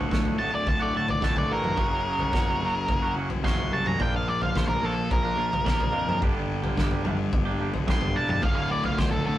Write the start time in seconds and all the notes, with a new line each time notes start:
Already playing: D2 A2 D3 F#4
0.00 D3 A3
0.10 D1 D2 A2 D3 A3 F#4, kick, snare
0.25 floor tom
0.38 D1 D2 A2 D3 A3 F#4 A5
0.53 D5, muted clean electric guitar stroke
0.66 D1 A5, kick, floor tom
0.80 D3 A3 F#4 D5
0.93 D1 A2 D3 A3 F#4
0.97 A5
1.08 D5, muted clean electric guitar stroke, floor tom
1.21 D1 D2 A2 D3 A3 F#4 A5, kick, snare
1.35 D3 A3 F#4 D5, floor tom
1.48 A1 A2 D3 A3 F#4
1.53 A#4
1.64 mid tom
1.76 F#1 F#2 C#3 F#3 A#3 C#4 F#4, kick, floor tom
2.19 F#3 A#3 C#4 F#4, floor tom
2.32 F#1 F#2 C#3 F#3 A#3 C#4 F#4, kick, snare
2.47 floor tom
2.61 F#1 F#2 C#3 F#3 A#3 C#4 F#4
2.75 muted clean electric guitar stroke
2.88 F#1, kick, floor tom
3.02 F#3 A#3 C#4 F#4
3.14 F#1 F#3 A#3 C#4
3.19 F#4
3.30 muted clean electric guitar stroke, floor tom
3.43 F#1 F#2 C#3 F#3 A#3 C#4 F#4 C6, kick, snare
3.57 F#3 A#3 C#4 F#4, floor tom
3.71 C2 F#3 A#3 C#4 F#4 A5
3.86 A#5, mid tom
3.98 A#1 A#2 F3 A#3 D4 F4 A#4 G5, kick, floor tom
4.16 F5
4.28 D5
4.40 A#3 D4 F4 A#4 F5, floor tom
4.54 A#1 A#2 F3 A#3 D4 F4 A#4 C5, kick, snare
4.68 A#4, floor tom
4.82 A#1 A#2 F3 A#3 D4 F4 A4 A#4
4.96 muted clean electric guitar stroke
5.11 A#1 A#4, kick, floor tom
5.23 A#3 D4 F4 A#4
5.36 A#1 A#3 D4 F4 A#4
5.51 muted clean electric guitar stroke, floor tom
5.64 A#1 A#2 F3 A#3 D4 F4 A#4, kick, snare
5.79 A#3 D4 F4 A#4, floor tom
5.92 F2 A#3 D4 F4 A#4
6.09 mid tom
6.20 G1 G2 D3 G3 A#3 D4 G4, kick, floor tom
6.62 G3 A#3 D4 G4, floor tom
6.76 G1 G2 D3 G3 A#3 D4 G4, kick, snare
6.91 floor tom
7.03 G1 D3 G3 A#3 D4 G4, mid tom
7.08 G2
7.18 muted clean electric guitar stroke
7.33 G1, kick, floor tom
7.45 G3 A#3 D4 G4
7.59 G1 G3 A#3 D4 G4
7.74 muted clean electric guitar stroke, floor tom
7.87 G1 G2 D3 G3 A#3 D4 G4, kick, snare, mid tom
7.91 C6
8.00 G3 A#3 D4 G4, floor tom
8.14 E1 G3 A#3 D4 G4 A5
8.29 A5, mid tom
8.42 D1 D2 A2 D3 F5, kick, floor tom
8.56 F5
8.72 D5
8.84 F5, floor tom
8.98 D1 C5, kick, snare
9.11 A4, floor tom
9.25 D1 D2 A2 D3 A4